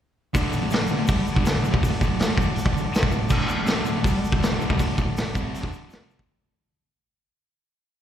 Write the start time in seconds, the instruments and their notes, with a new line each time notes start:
0.34 distorted electric guitar D2 A2 D3, transistor combo organ F#4 A4 D5, kick, open hi-hat, shaker
0.52 distorted electric guitar D2 A2, shaker
0.63 distorted electric guitar D2 A2
0.70 distorted electric guitar F2 C3, snare, open hi-hat, shaker
0.82 distorted electric guitar D2 A2
0.87 distorted electric guitar D2, shaker
0.92 distorted electric guitar A2
0.99 distorted electric guitar D2 A2
1.07 distorted electric guitar C3 G3, kick, open hi-hat, shaker
1.18 muted distorted electric guitar stroke
1.27 shaker
1.35 distorted electric guitar G2 D3, kick
1.45 muted distorted electric guitar stroke, snare, open hi-hat, shaker
1.53 distorted electric guitar D2 A2
1.62 distorted electric guitar D2 A2, shaker
1.72 distorted electric guitar C3 G3, kick
1.80 distorted electric guitar D2 A2, kick
1.84 open hi-hat, shaker
1.90 distorted electric guitar D2 A2
2.00 distorted electric guitar D2 A2, kick, shaker
2.11 distorted electric guitar D2 A2
2.19 snare, open hi-hat, shaker
2.29 distorted electric guitar D2 A2
2.37 distorted electric guitar C3 G3, kick, shaker
2.46 distorted electric guitar D2 A2
2.56 muted distorted electric guitar stroke, open hi-hat, shaker
2.65 distorted electric guitar G2 D3, kick
2.74 muted distorted electric guitar stroke, shaker
2.83 muted distorted electric guitar stroke
2.94 snare, open hi-hat, shaker
3.02 distorted electric guitar C3 G3, kick
3.11 distorted electric guitar D2 A2, shaker
3.28 distorted electric guitar D2 A2 D3, transistor combo organ F#4 A4 D5, kick, crash, shaker
3.48 distorted electric guitar D2 A2, shaker
3.58 distorted electric guitar D2 A2
3.65 distorted electric guitar F2 C3, snare, open hi-hat, shaker
3.75 distorted electric guitar D2 A2
3.85 distorted electric guitar D2 A2, shaker
3.95 distorted electric guitar D2 A2
4.03 distorted electric guitar C3 G3, kick, open hi-hat, shaker
4.14 muted distorted electric guitar stroke
4.25 shaker
4.32 distorted electric guitar G2 D3, kick
4.42 muted distorted electric guitar stroke, snare, open hi-hat, shaker
4.51 distorted electric guitar D2 A2
4.61 distorted electric guitar D2 A2, shaker
4.70 distorted electric guitar C3 G3, kick
4.79 distorted electric guitar D2 A2, kick, open hi-hat, shaker
4.86 distorted electric guitar D2 A2
4.94 distorted electric guitar D2 A2, kick, shaker
5.04 distorted electric guitar D2 A2
5.17 snare, open hi-hat, shaker
5.22 distorted electric guitar D2 A2
5.32 distorted electric guitar C3 G3 C4, kick, shaker
5.54 open hi-hat, shaker
5.59 distorted electric guitar D2 A2 D3, kick
5.73 shaker
5.88 distorted electric guitar F2 C3 F3, open hi-hat, shaker
5.93 snare
6.10 shaker
6.17 distorted electric guitar D2 A2, kick